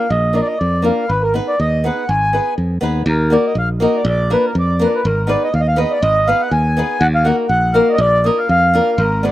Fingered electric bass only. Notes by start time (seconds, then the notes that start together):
0.10 A#1
0.61 F2
1.09 G#1
1.60 D#2
2.09 G#1
2.58 F2
2.82 D#2
3.06 D#2
3.55 A#1
4.05 A#1
4.55 F2
5.05 G#1
5.54 D#2
6.02 G#1
6.51 D#2
7.01 D#2
7.49 A#1
7.98 A#1
8.49 F2
8.98 G#1